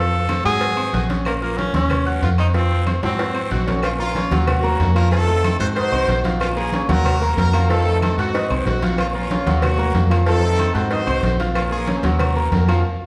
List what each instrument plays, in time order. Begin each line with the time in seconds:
Already playing: fingered electric bass F2, grand piano F3 F4 F5, tenor saxophone A4
0.13 high conga
0.28 grand piano C4 C5 C6, cowbell, high conga, low timbale, low agogo, short guiro, claves
0.44 fingered electric bass G#2, grand piano F#3 F#4 F#5, tenor saxophone G#4, cowbell, short guiro
0.61 cowbell, high conga, low agogo, long guiro
0.77 grand piano C4 C5 C6, high conga, low agogo, claves
0.93 fingered electric bass A#1, grand piano F#4 F#5 F#6, cowbell, high conga, low timbale, short guiro
1.09 grand piano C#4 C#5 C#6, cowbell, high conga, low agogo, short guiro
1.25 tenor saxophone A#3, cowbell, high conga, low agogo, long guiro, claves
1.42 tenor saxophone A#3, grand piano F4 F5 F6, high conga, low agogo
1.58 tenor saxophone C#4, cowbell, high conga, low timbale, short guiro
1.74 fingered electric bass D#2, grand piano C#4 C#5 C#6, tenor saxophone C#4, cowbell, high conga, low agogo, short guiro
1.90 cowbell, high conga, low conga, low agogo, long guiro, claves
2.06 grand piano F#4 F#5 F#6, high conga, low agogo
2.22 fingered electric bass F2, tenor saxophone F4, cowbell, high conga, low timbale, short guiro
2.38 grand piano C4 C5 C6, tenor saxophone D#4, cowbell, high conga, low agogo, short guiro, claves
2.54 grand piano F3 F4 F5, tenor saxophone C4, cowbell, high conga, low agogo, long guiro
2.71 high conga
2.86 grand piano C4 C5 C6, cowbell, high conga, low timbale, low agogo, short guiro, claves
3.03 fingered electric bass G#2, grand piano F#3 F#4 F#5, tenor saxophone C4, cowbell, high timbale, short guiro
3.19 cowbell, high conga, high timbale, low agogo, long guiro
3.34 grand piano C4 C5 C6, high conga, low agogo, claves
3.51 fingered electric bass A#1, horn section C4 D#4 F#4, grand piano F#4 F#5 F#6, cowbell, high conga, short guiro
3.67 grand piano C#4 C#5 C#6, cowbell, high conga, low timbale, low agogo, short guiro
3.83 horn section A#3 C#4 F4, cowbell, high conga, low agogo, long guiro, claves
3.99 grand piano A#3 A#4 A#5, horn section A#3 C#4 F4, high conga, low agogo
4.15 grand piano C#4 C#5 C#6, cowbell, high conga, low timbale, short guiro
4.31 fingered electric bass D#2, grand piano F#3 F#4 F#5, cowbell, high conga, low agogo, short guiro
4.47 horn section A#3 C#4 F#4, cowbell, high conga, low conga, low agogo, long guiro, claves
4.63 grand piano A#3 A#4 A#5, high conga, low agogo
4.80 fingered electric bass F2, cowbell, high conga, low timbale, short guiro
4.95 grand piano F3 F4 F5, horn section A#4, cowbell, high conga, low agogo, short guiro, claves
5.11 grand piano F3 F4 F5, horn section C4 D#4 A4, cowbell, high conga, low agogo, long guiro
5.27 grand piano A3 A4 A5, high conga
5.44 cowbell, high conga, low timbale, low agogo, short guiro, claves
5.60 fingered electric bass G#2, grand piano F#4 F#5 F#6, horn section C5, cowbell, short guiro
5.76 grand piano D#4 D#5 D#6, horn section D#4 F#4 C5, cowbell, high conga, low agogo, long guiro
5.92 fingered electric bass C2, grand piano C4 C5 C6, high conga, low agogo, claves
6.08 fingered electric bass A#1, cowbell, high conga, low timbale, short guiro
6.24 grand piano F4 F5 F6, cowbell, high conga, low agogo, short guiro
6.40 horn section A#3 C#4 F4, cowbell, high conga, low agogo, long guiro, claves
6.56 grand piano A#3 A#4 A#5, horn section C#4 F4 G#4, high conga, low agogo
6.72 grand piano C#4 C#5 C#6, cowbell, high conga, low timbale, short guiro
6.88 fingered electric bass D#2, grand piano F#3 F#4 F#5, horn section C#4 F#4 A#4, cowbell, high conga, low agogo, short guiro
7.05 cowbell, high conga, low conga, low agogo, long guiro, claves
7.21 grand piano A#3 A#4 A#5, high conga, low agogo
7.37 fingered electric bass F2, horn section C#4 F#4 A#4, cowbell, high conga, low timbale, short guiro
7.53 grand piano F3 F4 F5, cowbell, high conga, low agogo, short guiro, claves
7.70 grand piano F3 F4 F5, horn section C4 D#4 A4, cowbell, high conga, low agogo, long guiro
7.86 grand piano A3 A4 A5, high conga
8.01 horn section A4, cowbell, high conga, low timbale, low agogo, short guiro, claves
8.18 fingered electric bass G#2, horn section C4 D#4 F#4, grand piano F#4 F#5 F#6, cowbell, short guiro
8.34 grand piano D#4 D#5 D#6, cowbell, high conga, low agogo, long guiro
8.50 fingered electric bass C2, grand piano C4 C5 C6, high conga, low agogo, claves
8.66 fingered electric bass A#1, horn section C4 D#4 F#4, cowbell, high conga, low timbale, short guiro
8.82 grand piano F4 F5 F6, cowbell, high conga, low agogo, short guiro
8.98 horn section A#3 C#4 F4, cowbell, high conga, low agogo, long guiro, claves
9.14 grand piano A#3 A#4 A#5, horn section A#3 C#4 F4, high conga, low agogo
9.31 grand piano C#4 C#5 C#6, cowbell, high conga, low timbale, short guiro
9.46 fingered electric bass D#2, grand piano F#3 F#4 F#5, cowbell, high conga, low agogo, short guiro
9.62 horn section A#3 C#4 F#4, cowbell, high conga, low conga, low agogo, long guiro, claves
9.78 grand piano A#3 A#4 A#5, high conga, low conga, low agogo
9.95 fingered electric bass F2, cowbell, high conga, low timbale, short guiro
10.10 grand piano F3 F4 F5, cowbell, high conga, low agogo, short guiro, claves
10.26 grand piano F3 F4 F5, horn section C4 D#4 A4, cowbell, high conga, low agogo, long guiro
10.42 grand piano A3 A4 A5, high conga
10.59 cowbell, high conga, low timbale, low agogo, short guiro, claves
10.74 fingered electric bass G#2, grand piano F#4 F#5 F#6, horn section C5, cowbell, short guiro
10.91 grand piano D#4 D#5 D#6, horn section D#4 F#4 C5, cowbell, high conga, low agogo, long guiro
11.07 fingered electric bass C2, grand piano C4 C5 C6, high conga, low agogo, claves
11.23 fingered electric bass A#1, cowbell, high conga, low timbale, short guiro
11.40 grand piano F4 F5 F6, cowbell, high conga, low agogo, short guiro
11.55 horn section A#3 C#4 F4, cowbell, high conga, low agogo, long guiro, claves
11.71 grand piano A#3 A#4 A#5, horn section C#4 F4 G#4, high conga, low agogo
11.87 grand piano C#4 C#5 C#6, cowbell, high conga, low timbale, short guiro
11.98 horn section C5
12.03 fingered electric bass D#2, grand piano F#3 F#4 F#5, horn section C#4 F#4 A#4, cowbell, high conga, low agogo, short guiro
12.19 cowbell, high conga, low conga, low agogo, long guiro, claves
12.36 grand piano A#3 A#4 A#5, high conga, low agogo
12.52 fingered electric bass F2, horn section C#4 F#4 A#4, cowbell, high conga, low timbale, short guiro
12.68 grand piano F3 F4 F5, cowbell, high conga, low agogo, short guiro, claves